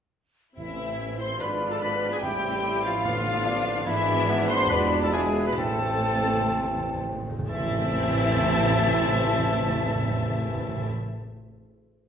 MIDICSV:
0, 0, Header, 1, 13, 480
1, 0, Start_track
1, 0, Key_signature, 0, "minor"
1, 0, Tempo, 412655
1, 667, Time_signature, 4, 2, 24, 8
1, 4979, Tempo, 435414
1, 6419, Tempo, 469484
1, 7859, Tempo, 486224
1, 12885, End_track
2, 0, Start_track
2, 0, Title_t, "Flute section"
2, 0, Program_c, 0, 73
2, 665, Note_on_c, 0, 76, 49
2, 1345, Note_off_c, 0, 76, 0
2, 1396, Note_on_c, 0, 84, 62
2, 1629, Note_off_c, 0, 84, 0
2, 1630, Note_on_c, 0, 83, 63
2, 1983, Note_off_c, 0, 83, 0
2, 1990, Note_on_c, 0, 81, 49
2, 2110, Note_on_c, 0, 83, 58
2, 2111, Note_off_c, 0, 81, 0
2, 2191, Note_off_c, 0, 83, 0
2, 2465, Note_on_c, 0, 80, 54
2, 2581, Note_on_c, 0, 79, 74
2, 2586, Note_off_c, 0, 80, 0
2, 3289, Note_off_c, 0, 79, 0
2, 3313, Note_on_c, 0, 77, 76
2, 4475, Note_off_c, 0, 77, 0
2, 4499, Note_on_c, 0, 76, 80
2, 5200, Note_off_c, 0, 76, 0
2, 5206, Note_on_c, 0, 84, 85
2, 5436, Note_on_c, 0, 83, 74
2, 5444, Note_off_c, 0, 84, 0
2, 5791, Note_on_c, 0, 81, 57
2, 5797, Note_off_c, 0, 83, 0
2, 5913, Note_on_c, 0, 80, 72
2, 5918, Note_off_c, 0, 81, 0
2, 6279, Note_on_c, 0, 83, 51
2, 6288, Note_off_c, 0, 80, 0
2, 6403, Note_on_c, 0, 81, 64
2, 6410, Note_off_c, 0, 83, 0
2, 7823, Note_off_c, 0, 81, 0
2, 8343, Note_on_c, 0, 76, 72
2, 11686, Note_off_c, 0, 76, 0
2, 12885, End_track
3, 0, Start_track
3, 0, Title_t, "Violin section"
3, 0, Program_c, 1, 48
3, 674, Note_on_c, 1, 76, 55
3, 1350, Note_off_c, 1, 76, 0
3, 1393, Note_on_c, 1, 84, 61
3, 1631, Note_on_c, 1, 83, 62
3, 1632, Note_off_c, 1, 84, 0
3, 1724, Note_off_c, 1, 83, 0
3, 1992, Note_on_c, 1, 81, 64
3, 2040, Note_off_c, 1, 81, 0
3, 2100, Note_on_c, 1, 83, 78
3, 2458, Note_off_c, 1, 83, 0
3, 2467, Note_on_c, 1, 80, 67
3, 2587, Note_on_c, 1, 79, 78
3, 2590, Note_off_c, 1, 80, 0
3, 3302, Note_on_c, 1, 77, 84
3, 3307, Note_off_c, 1, 79, 0
3, 4470, Note_off_c, 1, 77, 0
3, 4493, Note_on_c, 1, 76, 93
3, 5197, Note_off_c, 1, 76, 0
3, 5211, Note_on_c, 1, 84, 88
3, 5440, Note_on_c, 1, 83, 77
3, 5441, Note_off_c, 1, 84, 0
3, 5799, Note_off_c, 1, 83, 0
3, 5806, Note_on_c, 1, 81, 82
3, 5916, Note_on_c, 1, 80, 76
3, 5923, Note_off_c, 1, 81, 0
3, 6005, Note_off_c, 1, 80, 0
3, 6289, Note_on_c, 1, 83, 75
3, 6408, Note_on_c, 1, 81, 81
3, 6415, Note_off_c, 1, 83, 0
3, 7854, Note_off_c, 1, 81, 0
3, 8347, Note_on_c, 1, 81, 94
3, 11690, Note_off_c, 1, 81, 0
3, 12885, End_track
4, 0, Start_track
4, 0, Title_t, "Clarinet"
4, 0, Program_c, 2, 71
4, 673, Note_on_c, 2, 64, 51
4, 1390, Note_on_c, 2, 72, 51
4, 1408, Note_off_c, 2, 64, 0
4, 1621, Note_off_c, 2, 72, 0
4, 1628, Note_on_c, 2, 71, 59
4, 1987, Note_on_c, 2, 69, 55
4, 2005, Note_off_c, 2, 71, 0
4, 2110, Note_on_c, 2, 71, 68
4, 2127, Note_off_c, 2, 69, 0
4, 2466, Note_off_c, 2, 71, 0
4, 2473, Note_on_c, 2, 68, 60
4, 2527, Note_off_c, 2, 68, 0
4, 2595, Note_on_c, 2, 67, 70
4, 3297, Note_off_c, 2, 67, 0
4, 3320, Note_on_c, 2, 65, 76
4, 4500, Note_on_c, 2, 64, 75
4, 4517, Note_off_c, 2, 65, 0
4, 5216, Note_on_c, 2, 72, 82
4, 5232, Note_off_c, 2, 64, 0
4, 5436, Note_off_c, 2, 72, 0
4, 5443, Note_on_c, 2, 71, 66
4, 5604, Note_off_c, 2, 71, 0
4, 5802, Note_on_c, 2, 69, 71
4, 5920, Note_on_c, 2, 68, 84
4, 5937, Note_off_c, 2, 69, 0
4, 6284, Note_off_c, 2, 68, 0
4, 6290, Note_on_c, 2, 71, 72
4, 6348, Note_off_c, 2, 71, 0
4, 6418, Note_on_c, 2, 69, 64
4, 7830, Note_off_c, 2, 69, 0
4, 8345, Note_on_c, 2, 69, 69
4, 11688, Note_off_c, 2, 69, 0
4, 12885, End_track
5, 0, Start_track
5, 0, Title_t, "Violin section"
5, 0, Program_c, 3, 48
5, 664, Note_on_c, 3, 64, 56
5, 1344, Note_off_c, 3, 64, 0
5, 1387, Note_on_c, 3, 72, 57
5, 1480, Note_off_c, 3, 72, 0
5, 1634, Note_on_c, 3, 71, 64
5, 1727, Note_off_c, 3, 71, 0
5, 1991, Note_on_c, 3, 69, 57
5, 2109, Note_off_c, 3, 69, 0
5, 2116, Note_on_c, 3, 71, 58
5, 2474, Note_off_c, 3, 71, 0
5, 2475, Note_on_c, 3, 68, 60
5, 2591, Note_off_c, 3, 68, 0
5, 2594, Note_on_c, 3, 67, 69
5, 3296, Note_off_c, 3, 67, 0
5, 3311, Note_on_c, 3, 65, 86
5, 4475, Note_off_c, 3, 65, 0
5, 4502, Note_on_c, 3, 64, 77
5, 5201, Note_off_c, 3, 64, 0
5, 5209, Note_on_c, 3, 72, 79
5, 5445, Note_off_c, 3, 72, 0
5, 5450, Note_on_c, 3, 71, 73
5, 5538, Note_off_c, 3, 71, 0
5, 5803, Note_on_c, 3, 69, 64
5, 5851, Note_off_c, 3, 69, 0
5, 5920, Note_on_c, 3, 68, 70
5, 6008, Note_off_c, 3, 68, 0
5, 6291, Note_on_c, 3, 71, 70
5, 6416, Note_off_c, 3, 71, 0
5, 6423, Note_on_c, 3, 69, 78
5, 7832, Note_off_c, 3, 69, 0
5, 8346, Note_on_c, 3, 76, 82
5, 11689, Note_off_c, 3, 76, 0
5, 12885, End_track
6, 0, Start_track
6, 0, Title_t, "Bassoon"
6, 0, Program_c, 4, 70
6, 1629, Note_on_c, 4, 62, 59
6, 2589, Note_on_c, 4, 64, 68
6, 2607, Note_off_c, 4, 62, 0
6, 3538, Note_off_c, 4, 64, 0
6, 3545, Note_on_c, 4, 65, 79
6, 4019, Note_on_c, 4, 62, 70
6, 4037, Note_off_c, 4, 65, 0
6, 4499, Note_on_c, 4, 64, 80
6, 4516, Note_off_c, 4, 62, 0
6, 4972, Note_off_c, 4, 64, 0
6, 4979, Note_on_c, 4, 59, 63
6, 5443, Note_on_c, 4, 62, 75
6, 5459, Note_off_c, 4, 59, 0
6, 5908, Note_on_c, 4, 64, 74
6, 5925, Note_off_c, 4, 62, 0
6, 6406, Note_off_c, 4, 64, 0
6, 6413, Note_on_c, 4, 60, 67
6, 8067, Note_off_c, 4, 60, 0
6, 8343, Note_on_c, 4, 52, 78
6, 11685, Note_off_c, 4, 52, 0
6, 12885, End_track
7, 0, Start_track
7, 0, Title_t, "Viola section"
7, 0, Program_c, 5, 48
7, 658, Note_on_c, 5, 60, 47
7, 660, Note_on_c, 5, 64, 49
7, 1581, Note_off_c, 5, 60, 0
7, 1582, Note_off_c, 5, 64, 0
7, 1629, Note_on_c, 5, 62, 50
7, 1630, Note_on_c, 5, 65, 50
7, 2544, Note_off_c, 5, 62, 0
7, 2544, Note_off_c, 5, 65, 0
7, 2588, Note_on_c, 5, 60, 58
7, 2589, Note_on_c, 5, 64, 56
7, 3498, Note_off_c, 5, 60, 0
7, 3498, Note_off_c, 5, 64, 0
7, 3548, Note_on_c, 5, 59, 68
7, 3550, Note_on_c, 5, 62, 67
7, 4451, Note_off_c, 5, 59, 0
7, 4452, Note_off_c, 5, 62, 0
7, 4491, Note_on_c, 5, 59, 75
7, 4491, Note_on_c, 5, 62, 75
7, 5399, Note_off_c, 5, 59, 0
7, 5399, Note_off_c, 5, 62, 0
7, 5441, Note_on_c, 5, 56, 70
7, 5442, Note_on_c, 5, 62, 70
7, 5903, Note_off_c, 5, 62, 0
7, 5906, Note_off_c, 5, 56, 0
7, 5917, Note_on_c, 5, 62, 51
7, 5920, Note_on_c, 5, 56, 60
7, 6406, Note_off_c, 5, 62, 0
7, 6408, Note_off_c, 5, 56, 0
7, 6410, Note_on_c, 5, 60, 60
7, 6412, Note_on_c, 5, 57, 70
7, 8106, Note_off_c, 5, 60, 0
7, 8107, Note_off_c, 5, 57, 0
7, 8345, Note_on_c, 5, 60, 89
7, 8345, Note_on_c, 5, 64, 86
7, 11688, Note_off_c, 5, 60, 0
7, 11688, Note_off_c, 5, 64, 0
7, 12885, End_track
8, 0, Start_track
8, 0, Title_t, "French horn section"
8, 0, Program_c, 6, 60
8, 667, Note_on_c, 6, 52, 53
8, 1346, Note_off_c, 6, 52, 0
8, 1382, Note_on_c, 6, 60, 54
8, 1622, Note_off_c, 6, 60, 0
8, 1635, Note_on_c, 6, 59, 58
8, 1796, Note_off_c, 6, 59, 0
8, 1986, Note_on_c, 6, 57, 58
8, 2106, Note_off_c, 6, 57, 0
8, 2108, Note_on_c, 6, 59, 64
8, 2463, Note_off_c, 6, 59, 0
8, 2466, Note_on_c, 6, 56, 56
8, 2585, Note_on_c, 6, 55, 77
8, 2586, Note_off_c, 6, 56, 0
8, 3292, Note_off_c, 6, 55, 0
8, 3315, Note_on_c, 6, 53, 72
8, 4477, Note_off_c, 6, 53, 0
8, 4494, Note_on_c, 6, 52, 87
8, 5197, Note_off_c, 6, 52, 0
8, 5206, Note_on_c, 6, 60, 77
8, 5433, Note_on_c, 6, 59, 72
8, 5439, Note_off_c, 6, 60, 0
8, 5796, Note_off_c, 6, 59, 0
8, 5798, Note_on_c, 6, 57, 71
8, 5919, Note_off_c, 6, 57, 0
8, 5919, Note_on_c, 6, 56, 74
8, 6283, Note_on_c, 6, 59, 69
8, 6284, Note_off_c, 6, 56, 0
8, 6411, Note_off_c, 6, 59, 0
8, 6419, Note_on_c, 6, 57, 69
8, 7859, Note_off_c, 6, 57, 0
8, 8342, Note_on_c, 6, 57, 88
8, 11685, Note_off_c, 6, 57, 0
8, 12885, End_track
9, 0, Start_track
9, 0, Title_t, "Trombone section"
9, 0, Program_c, 7, 61
9, 668, Note_on_c, 7, 52, 40
9, 673, Note_on_c, 7, 60, 39
9, 1586, Note_off_c, 7, 52, 0
9, 1588, Note_off_c, 7, 60, 0
9, 1637, Note_on_c, 7, 62, 48
9, 1639, Note_on_c, 7, 53, 47
9, 2592, Note_on_c, 7, 60, 52
9, 2593, Note_on_c, 7, 52, 53
9, 2594, Note_off_c, 7, 62, 0
9, 2595, Note_off_c, 7, 53, 0
9, 3528, Note_off_c, 7, 60, 0
9, 3545, Note_on_c, 7, 59, 66
9, 3547, Note_off_c, 7, 52, 0
9, 3553, Note_on_c, 7, 50, 68
9, 4496, Note_off_c, 7, 59, 0
9, 4500, Note_off_c, 7, 50, 0
9, 4502, Note_on_c, 7, 52, 61
9, 4502, Note_on_c, 7, 62, 63
9, 5430, Note_off_c, 7, 52, 0
9, 5448, Note_on_c, 7, 53, 71
9, 6384, Note_off_c, 7, 62, 0
9, 6401, Note_off_c, 7, 53, 0
9, 6416, Note_on_c, 7, 60, 53
9, 6417, Note_on_c, 7, 52, 54
9, 8068, Note_off_c, 7, 60, 0
9, 8101, Note_off_c, 7, 52, 0
9, 8346, Note_on_c, 7, 60, 68
9, 8348, Note_on_c, 7, 52, 65
9, 11689, Note_off_c, 7, 60, 0
9, 11691, Note_off_c, 7, 52, 0
9, 12885, End_track
10, 0, Start_track
10, 0, Title_t, "Cello section"
10, 0, Program_c, 8, 48
10, 665, Note_on_c, 8, 45, 41
10, 1585, Note_off_c, 8, 45, 0
10, 1637, Note_on_c, 8, 44, 46
10, 2594, Note_off_c, 8, 44, 0
10, 2594, Note_on_c, 8, 45, 58
10, 4461, Note_off_c, 8, 45, 0
10, 4497, Note_on_c, 8, 44, 68
10, 5402, Note_off_c, 8, 44, 0
10, 5449, Note_on_c, 8, 40, 67
10, 6418, Note_on_c, 8, 45, 51
10, 6420, Note_off_c, 8, 40, 0
10, 8077, Note_off_c, 8, 45, 0
10, 8347, Note_on_c, 8, 45, 75
10, 11690, Note_off_c, 8, 45, 0
10, 12885, End_track
11, 0, Start_track
11, 0, Title_t, "Timpani"
11, 0, Program_c, 10, 47
11, 666, Note_on_c, 10, 45, 53
11, 1346, Note_off_c, 10, 45, 0
11, 2593, Note_on_c, 10, 45, 60
11, 3263, Note_off_c, 10, 45, 0
11, 3546, Note_on_c, 10, 45, 70
11, 4212, Note_off_c, 10, 45, 0
11, 5438, Note_on_c, 10, 40, 78
11, 6120, Note_off_c, 10, 40, 0
11, 6411, Note_on_c, 10, 45, 38
11, 6483, Note_off_c, 10, 45, 0
11, 6495, Note_on_c, 10, 45, 32
11, 6565, Note_off_c, 10, 45, 0
11, 6577, Note_on_c, 10, 45, 40
11, 6651, Note_off_c, 10, 45, 0
11, 6663, Note_on_c, 10, 45, 37
11, 6737, Note_off_c, 10, 45, 0
11, 6750, Note_on_c, 10, 45, 37
11, 6822, Note_off_c, 10, 45, 0
11, 6834, Note_on_c, 10, 45, 39
11, 6905, Note_off_c, 10, 45, 0
11, 6917, Note_on_c, 10, 45, 43
11, 6996, Note_off_c, 10, 45, 0
11, 7180, Note_on_c, 10, 45, 49
11, 7250, Note_off_c, 10, 45, 0
11, 7262, Note_on_c, 10, 45, 55
11, 7340, Note_off_c, 10, 45, 0
11, 7352, Note_on_c, 10, 45, 60
11, 7430, Note_off_c, 10, 45, 0
11, 7530, Note_on_c, 10, 45, 63
11, 7612, Note_off_c, 10, 45, 0
11, 7624, Note_on_c, 10, 45, 70
11, 7698, Note_off_c, 10, 45, 0
11, 7711, Note_on_c, 10, 45, 72
11, 7794, Note_off_c, 10, 45, 0
11, 7806, Note_on_c, 10, 45, 75
11, 7883, Note_off_c, 10, 45, 0
11, 7895, Note_on_c, 10, 45, 79
11, 7969, Note_off_c, 10, 45, 0
11, 7981, Note_on_c, 10, 45, 97
11, 8055, Note_off_c, 10, 45, 0
11, 8067, Note_on_c, 10, 45, 89
11, 8147, Note_off_c, 10, 45, 0
11, 8158, Note_on_c, 10, 45, 101
11, 8237, Note_off_c, 10, 45, 0
11, 8249, Note_on_c, 10, 45, 109
11, 8327, Note_off_c, 10, 45, 0
11, 8339, Note_on_c, 10, 45, 87
11, 8411, Note_off_c, 10, 45, 0
11, 8417, Note_on_c, 10, 45, 75
11, 8489, Note_off_c, 10, 45, 0
11, 8493, Note_on_c, 10, 45, 88
11, 8565, Note_off_c, 10, 45, 0
11, 8567, Note_on_c, 10, 45, 84
11, 8639, Note_off_c, 10, 45, 0
11, 8640, Note_on_c, 10, 45, 87
11, 8712, Note_off_c, 10, 45, 0
11, 8713, Note_on_c, 10, 45, 80
11, 8783, Note_off_c, 10, 45, 0
11, 8783, Note_on_c, 10, 45, 80
11, 8854, Note_off_c, 10, 45, 0
11, 8854, Note_on_c, 10, 45, 78
11, 8923, Note_off_c, 10, 45, 0
11, 8923, Note_on_c, 10, 45, 83
11, 8993, Note_off_c, 10, 45, 0
11, 8993, Note_on_c, 10, 45, 80
11, 9058, Note_off_c, 10, 45, 0
11, 9058, Note_on_c, 10, 45, 90
11, 9128, Note_off_c, 10, 45, 0
11, 9128, Note_on_c, 10, 45, 76
11, 9198, Note_off_c, 10, 45, 0
11, 9198, Note_on_c, 10, 45, 82
11, 9269, Note_off_c, 10, 45, 0
11, 9269, Note_on_c, 10, 45, 88
11, 9340, Note_off_c, 10, 45, 0
11, 9340, Note_on_c, 10, 45, 87
11, 9412, Note_off_c, 10, 45, 0
11, 9413, Note_on_c, 10, 45, 74
11, 9485, Note_off_c, 10, 45, 0
11, 9487, Note_on_c, 10, 45, 87
11, 9559, Note_off_c, 10, 45, 0
11, 9562, Note_on_c, 10, 45, 85
11, 9634, Note_off_c, 10, 45, 0
11, 9636, Note_on_c, 10, 45, 84
11, 9708, Note_off_c, 10, 45, 0
11, 9713, Note_on_c, 10, 45, 82
11, 9779, Note_off_c, 10, 45, 0
11, 9779, Note_on_c, 10, 45, 86
11, 9851, Note_off_c, 10, 45, 0
11, 9852, Note_on_c, 10, 45, 81
11, 9924, Note_off_c, 10, 45, 0
11, 9925, Note_on_c, 10, 45, 92
11, 9997, Note_off_c, 10, 45, 0
11, 9998, Note_on_c, 10, 45, 72
11, 10070, Note_off_c, 10, 45, 0
11, 10071, Note_on_c, 10, 45, 89
11, 10143, Note_off_c, 10, 45, 0
11, 10145, Note_on_c, 10, 45, 81
11, 10215, Note_off_c, 10, 45, 0
11, 10215, Note_on_c, 10, 45, 87
11, 10287, Note_off_c, 10, 45, 0
11, 10288, Note_on_c, 10, 45, 80
11, 10360, Note_off_c, 10, 45, 0
11, 10360, Note_on_c, 10, 45, 87
11, 10432, Note_off_c, 10, 45, 0
11, 10435, Note_on_c, 10, 45, 75
11, 10506, Note_off_c, 10, 45, 0
11, 10506, Note_on_c, 10, 45, 81
11, 10578, Note_off_c, 10, 45, 0
11, 10578, Note_on_c, 10, 45, 84
11, 10644, Note_off_c, 10, 45, 0
11, 10644, Note_on_c, 10, 45, 83
11, 10714, Note_off_c, 10, 45, 0
11, 10714, Note_on_c, 10, 45, 78
11, 10781, Note_off_c, 10, 45, 0
11, 10781, Note_on_c, 10, 45, 88
11, 10853, Note_off_c, 10, 45, 0
11, 10854, Note_on_c, 10, 45, 85
11, 10924, Note_off_c, 10, 45, 0
11, 10924, Note_on_c, 10, 45, 86
11, 10996, Note_off_c, 10, 45, 0
11, 11003, Note_on_c, 10, 45, 77
11, 11072, Note_off_c, 10, 45, 0
11, 11072, Note_on_c, 10, 45, 93
11, 11144, Note_off_c, 10, 45, 0
11, 11153, Note_on_c, 10, 45, 81
11, 11225, Note_off_c, 10, 45, 0
11, 11230, Note_on_c, 10, 45, 83
11, 11302, Note_off_c, 10, 45, 0
11, 11302, Note_on_c, 10, 45, 77
11, 11373, Note_off_c, 10, 45, 0
11, 11373, Note_on_c, 10, 45, 86
11, 11445, Note_off_c, 10, 45, 0
11, 11448, Note_on_c, 10, 45, 80
11, 11520, Note_off_c, 10, 45, 0
11, 11521, Note_on_c, 10, 45, 90
11, 11593, Note_off_c, 10, 45, 0
11, 11593, Note_on_c, 10, 45, 82
11, 11665, Note_off_c, 10, 45, 0
11, 12885, End_track
12, 0, Start_track
12, 0, Title_t, "Double bass section"
12, 0, Program_c, 11, 48
12, 664, Note_on_c, 11, 33, 47
12, 1584, Note_off_c, 11, 33, 0
12, 1634, Note_on_c, 11, 32, 48
12, 2593, Note_off_c, 11, 32, 0
12, 2594, Note_on_c, 11, 33, 58
12, 4460, Note_off_c, 11, 33, 0
12, 4497, Note_on_c, 11, 32, 79
12, 5403, Note_off_c, 11, 32, 0
12, 5442, Note_on_c, 11, 28, 69
12, 6415, Note_on_c, 11, 33, 63
12, 6417, Note_off_c, 11, 28, 0
12, 8076, Note_off_c, 11, 33, 0
12, 8350, Note_on_c, 11, 33, 89
12, 11693, Note_off_c, 11, 33, 0
12, 12885, End_track
13, 0, Start_track
13, 0, Title_t, "Tuba"
13, 0, Program_c, 12, 58
13, 670, Note_on_c, 12, 33, 49
13, 1637, Note_on_c, 12, 32, 54
13, 1655, Note_off_c, 12, 33, 0
13, 2582, Note_off_c, 12, 32, 0
13, 2589, Note_on_c, 12, 33, 69
13, 4458, Note_off_c, 12, 33, 0
13, 4493, Note_on_c, 12, 32, 77
13, 5440, Note_on_c, 12, 28, 74
13, 5457, Note_off_c, 12, 32, 0
13, 6409, Note_off_c, 12, 28, 0
13, 6415, Note_on_c, 12, 33, 65
13, 8076, Note_off_c, 12, 33, 0
13, 8347, Note_on_c, 12, 33, 85
13, 11690, Note_off_c, 12, 33, 0
13, 12885, End_track
0, 0, End_of_file